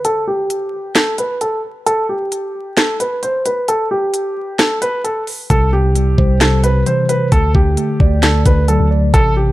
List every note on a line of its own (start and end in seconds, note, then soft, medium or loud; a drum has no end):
0.05 0.23 A4 loud
0.05 closed hi-hat medium
0.27 0.92 G4 medium
0.50 closed hi-hat medium
0.95 1.14 A4 medium
0.95 snare loud
0.95 clap medium
0.95 closed hi-hat medium
1.18 1.37 B4 medium
1.18 closed hi-hat medium
1.41 1.59 A4 medium
1.41 closed hi-hat medium
1.86 2.05 A4 loud
1.86 closed hi-hat medium
2.09 2.73 G4 medium
2.32 closed hi-hat medium
2.77 2.96 A4 medium
2.77 snare loud
2.77 clap medium
2.77 closed hi-hat medium
3.00 3.18 B4 medium
3.00 closed hi-hat medium
3.23 3.41 C5 medium
3.23 closed hi-hat medium
3.45 3.64 B4 medium
3.45 closed hi-hat medium
3.68 3.87 A4 medium
3.68 closed hi-hat medium
3.91 4.55 G4 medium
4.14 closed hi-hat medium
4.59 4.77 A4 medium
4.59 snare loud
4.59 clap medium
4.59 closed hi-hat medium
4.82 5.00 B4 medium
4.82 closed hi-hat medium
5.04 5.23 A4 medium
5.04 closed hi-hat medium
5.27 open hi-hat medium
5.50 6.16 C2 loud
5.50 5.71 C3 medium
5.50 5.68 A4 loud
5.50 kick loud
5.50 closed hi-hat medium
5.73 6.40 C3 medium
5.73 6.37 G4 medium
5.96 7.09 G3 medium
5.96 closed hi-hat medium
6.18 6.84 C2 loud
6.18 7.08 C5 medium
6.18 kick medium
6.41 6.62 C3 loud
6.41 6.59 A4 medium
6.41 snare loud
6.41 clap medium
6.41 closed hi-hat medium
6.64 7.32 C3 medium
6.64 6.82 B4 medium
6.64 closed hi-hat medium
6.86 7.32 E3 medium
6.86 7.05 C5 medium
6.86 closed hi-hat medium
7.09 7.27 B4 medium
7.09 7.32 C5 medium
7.09 closed hi-hat medium
7.32 7.54 D2 loud
7.32 7.53 D3 medium
7.32 7.50 A4 loud
7.32 kick loud
7.32 closed hi-hat medium
7.55 7.76 D2 loud
7.55 8.22 D3 medium
7.55 8.19 G4 medium
7.55 kick loud
7.77 8.91 A3 medium
7.77 closed hi-hat medium
8.00 8.44 D2 loud
8.00 8.90 D5 medium
8.00 kick medium
8.23 8.44 D3 medium
8.23 8.41 A4 medium
8.23 snare loud
8.23 clap medium
8.23 closed hi-hat medium
8.45 8.78 D2 loud
8.45 9.14 D3 medium
8.45 8.64 B4 medium
8.45 kick medium
8.45 closed hi-hat medium
8.68 9.14 F#3 medium
8.68 8.87 A4 medium
8.68 closed hi-hat medium
8.80 9.12 D2 loud
8.91 9.14 D5 medium
9.14 9.52 A1 loud
9.14 9.36 C3 medium
9.14 9.32 A4 loud
9.14 kick loud
9.14 closed hi-hat medium
9.37 9.52 C3 medium
9.37 9.52 G4 medium